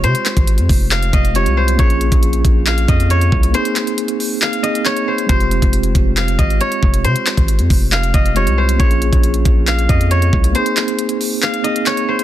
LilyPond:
<<
  \new Staff \with { instrumentName = "Guzheng" } { \time 4/4 \key f \minor \tempo 4 = 137 c''2 f''8 ees''8 des''8 c''8 | des''2 f''8 ees''8 des''8 r8 | c''2 f''8 ees''8 des''8 c''8 | c''2 f''8 ees''8 des''8 r8 |
c''2 f''8 ees''8 des''8 c''8 | des''2 f''8 ees''8 des''8 r8 | c''2 f''8 ees''8 des''8 c''8 | }
  \new Staff \with { instrumentName = "Tine electric piano" } { \time 4/4 \key f \minor <aes c' f' g'>2. <aes c' f' g'>4 | <bes des' f' aes'>1 | <bes c' ees' aes'>2~ <bes c' ees' aes'>8 <bes c' ees' aes'>4. | <aes c' f' g'>1~ |
<aes c' f' g'>2. <aes c' f' g'>4 | <bes des' f' aes'>1 | <bes c' ees' aes'>2~ <bes c' ees' aes'>8 <bes c' ees' aes'>4. | }
  \new Staff \with { instrumentName = "808-style bass" } { \clef bass \time 4/4 \key f \minor c16 r8 aes,,8 f,16 f,,4 f,,8. c,8. | bes,,8. bes,,8. bes,,4 f,4 c,8 | r1 | f,,8. f,,8. f,,4 aes,,8 r8 f,,8 |
c16 r8 aes,,8 f,16 f,,4 f,,8. c,8. | bes,,8. bes,,8. bes,,4 f,4 c,8 | r1 | }
  \new DrumStaff \with { instrumentName = "Drums" } \drummode { \time 4/4 hh16 hh16 <hc hh>16 <hh bd>16 hh16 hh16 <hho bd>8 <hc hh>16 hh16 <hh bd>16 hh16 hh16 hh8 hh16 | <hh bd>16 hh16 hh16 <hh bd>16 hh16 hh16 <hh bd>8 <hc hh>16 hh16 <hh bd>16 hh16 hh16 hh16 bd16 hh16 | hh16 hh16 <hc hh>16 hh16 hh16 hh16 hho8 <hc hh>16 hh16 hh16 hh16 <hc hh>16 hh8 hh16 | <hh bd>16 hh16 hh16 <hh bd>16 hh16 hh16 <hh bd>8 <hc hh>16 hh16 <hh bd>16 hh16 hh16 hh16 bd16 hh16 |
hh16 hh16 <hc hh>16 <hh bd>16 hh16 hh16 <hho bd>8 <hc hh>16 hh16 <hh bd>16 hh16 hh16 hh8 hh16 | <hh bd>16 hh16 hh16 <hh bd>16 hh16 hh16 <hh bd>8 <hc hh>16 hh16 <hh bd>16 hh16 hh16 hh16 bd16 hh16 | hh16 hh16 <hc hh>16 hh16 hh16 hh16 hho8 <hc hh>16 hh16 hh16 hh16 <hc hh>16 hh8 hh16 | }
>>